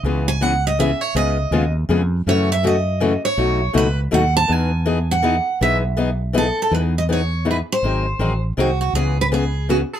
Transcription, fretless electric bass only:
X:1
M:3/4
L:1/8
Q:"Swing" 1/4=162
K:E
V:1 name="Fretless electric bass" clef=bass
C,,6 | C,,2 D,,2 ^E,,2 | F,,6 | B,,,2 C,,2 D,,2 |
E,,6 | B,,,6 | E,,6 | G,,,2 A,,,2 ^B,,,2 |
C,,6 |]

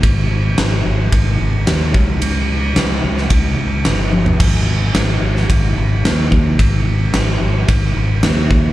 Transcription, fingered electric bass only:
X:1
M:4/4
L:1/8
Q:1/4=110
K:Cphr
V:1 name="Fingered electric bass" clef=bass
A,,,2 A,,, A,,, A,,, A,,, E,, D,, | D,,2 D,, D,, D,, D,, G,,,2 | A,,,2 A,,, A,,, A,,, A,,, E,,2 | A,,,2 A,,, A,,, A,,, A,,, E,,2 |]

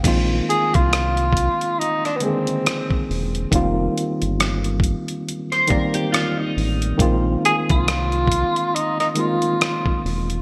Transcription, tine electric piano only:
X:1
M:4/4
L:1/16
Q:"Swing 16ths" 1/4=69
K:Bbmix
V:1 name="Tine electric piano"
[E,A,B,CF]6 z4 [D,E,A,B,CA]4- [D,E,A,B,CA] z | [E,G,B,CF]6 z4 [E,G,B,Cd]4- [E,G,B,Cd] z | [E,A,B,CF]6 z4 [E,A,B,CF]4- [E,A,B,CF] z |]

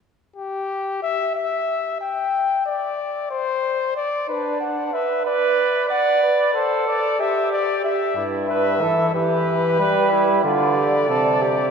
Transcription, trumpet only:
X:1
M:3/4
L:1/8
Q:1/4=92
K:Gmix
V:1 name="Trumpet"
z G2 e e2 | g2 d2 c2 | d B ^f e d2 | ^f B c d e d |
e z e2 B2- | B2 d4 |]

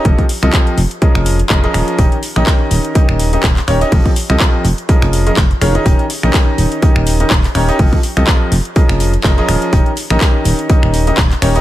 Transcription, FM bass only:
X:1
M:4/4
L:1/16
Q:"Swing 16ths" 1/4=124
K:Ebmix
V:1 name="FM bass" clef=bass
F,,, z2 C,, z2 F,,, z2 F,,,2 z F,,, z E,,, z | E,,, z2 B,,, z2 E,,, z2 E,,,2 z E,,, z E,,, z | F,,, z2 C,, z2 F,,, z2 F,,,2 z F,,, z F,,, z | E,,, z2 B,,, z2 E,,, z2 E,,,2 z E,,, z E,,, z |
F,,, z2 C,, z2 F,,, z2 F,,,2 z F,,, z E,,, z | E,,, z2 B,,, z2 E,,, z2 E,,,2 z E,,, z E,,, z |]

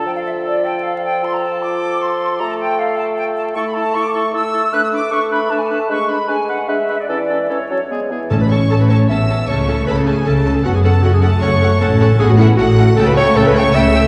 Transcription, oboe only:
X:1
M:3/4
L:1/8
Q:1/4=154
K:F
V:1 name="Oboe"
A6 | A6- | A6 | [K:A] A A A A A A |
B B B B B B | B B B B B B | A A A A G G | z6 |
z6 | z6 | z6 | [K:Amix] z6 |]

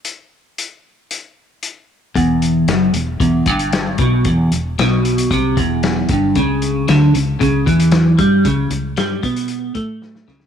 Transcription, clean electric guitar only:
X:1
M:4/4
L:1/8
Q:1/4=114
K:Edor
V:1 name="Clean electric guitar" clef=bass
z8 | E,,2 F,, E,, E,, G,,2 B,, | E,, E,, B,,2 =C, E,,2 G,, | C,2 D, C, C, E,2 G, |
C, C, G, B,2 A,2 C, |]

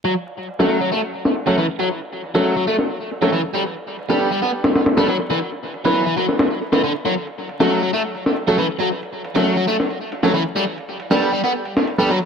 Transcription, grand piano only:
X:1
M:4/4
L:1/16
Q:1/4=137
K:F#phr
V:1 name="Grand piano"
z4 z [F,A,CA] z6 z [F,A,CA] z2 | z4 z [F,A,CA] z6 z [F,A,CA] z2 | z4 z [G,B,DA] z6 z [G,B,DA] z2 | z4 z [F,B,EB] z8 z2 |
z4 z [F,A,CA] z6 z [F,A,CA] z2 | z4 z [F,A,CA] z6 z [F,A,CA] z2 | z4 z [G,B,DA] z6 z [G,B,DA] z2 |]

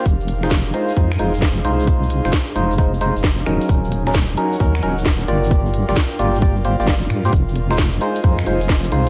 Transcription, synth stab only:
X:1
M:4/4
L:1/16
Q:"Swing 16ths" 1/4=132
K:Fdor
V:1 name="Synth stab"
z3 [A,EFc] z2 [A,EFc] z [A,EFc] z [A,EFc] z3 [A,EFc]2- | [A,EFc]3 [A,EFc] z2 [A,EFc] z [A,EFc] z [A,EFc] z3 [_G,_DEB]2- | [_G,_DEB]3 [G,DEB] z2 [G,DEB] z [G,DEB] z [G,DEB] z3 [B,F=G=d]2- | [B,FGd]3 [B,FGd] z2 [B,FGd] z [B,FGd] z [B,FGc] [B,FGd] z3 [B,FGc] |
z3 [A,EFc] z2 [A,EFc] z [A,EFc] z [A,EFc] z3 [A,EFc]2 |]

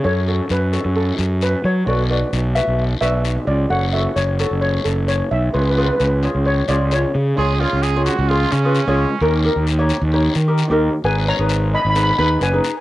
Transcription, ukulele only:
X:1
M:4/4
L:1/16
Q:1/4=131
K:F#m
V:1 name="Ukulele"
[FAc] z [FAc]2 z2 [FAc]4- [FAc] z4 z | [FBd] z [FBd]2 z2 [FBe]2 z2 [FBd]4 z2 | [FAc] z [FAc]2 z2 [FAc]4- [FAc] z4 z | [^EGc] z [EGB]2 z2 [EGc]2 z2 [EGc]4 z2 |
[^EGc] z [EGc]2 z [EGc]2 z [EGc]2 z [EGB] z [EGc]2 z | [^D=G^A] z [DGA]2 z [DGc]2 z [DGc]2 z [DGA] z [DGA]2 z | [K:G#m] [DGB]2 z [DGB]3 z2 [DGB] z [DGB]2 z [DGB]2 z |]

